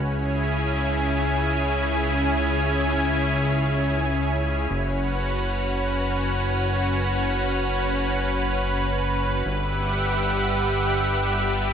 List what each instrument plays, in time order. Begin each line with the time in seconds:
Already playing: analog synth bass C#2, analog synth pad C#3 C#4 E4 G#4 G#5
4.71 analog synth bass F#1, analog synth pad C#4 F#4 B4
9.46 analog synth bass G1, analog synth pad G3 G4 E5 F#5